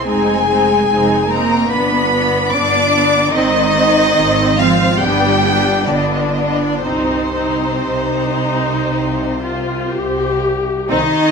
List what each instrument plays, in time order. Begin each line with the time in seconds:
0.05 double bass section F1, cello section G#3, viola section C4 D#4, violin section G#4 G#5
0.49 viola section C4 D#4
0.90 double bass section F1, viola section C4 D#4
1.30 cello section A#3, viola section C4 D#4, violin section A#4 A#5
1.71 double bass section G1, cello section B3, viola section B3 D4, violin section B4 B5
2.14 viola section B3 D4
2.51 double bass section G1, viola section B3 D4, cello section D4, violin section D5 D6
2.93 viola section B3 D4
3.32 double bass section G#1, cello section D#3, viola section C4, violin section D#4 D#5
3.74 viola section C4
4.16 double bass section G#1, viola section C4
4.57 cello section F3, viola section C4, violin section F4 F5
5.00 double bass section G1, cello section G3, viola section B3 D4, violin section G4 G5
5.44 viola section B3 D4
5.87 double bass section G1, cello section D3, viola section B3 D4, violin section D4 D5
5.95 violin section D#5
6.04 violin section D5
6.12 violin section D#5
6.21 violin section D5
6.31 violin section D#5
6.37 viola section B3 D4, violin section D5
6.47 violin section D#5
6.57 violin section D5
6.82 double bass section C2, cello section C3, violin section C4 C5, viola section C4 D#4
7.35 viola section C4 D#4
7.84 double bass section C2, viola section D#4
8.89 double bass section C2
9.42 viola section F4
9.93 double bass section C2, viola section G4
10.90 double bass section C2, cello section D#3, viola section C4 D#4, violin section D#4 D#5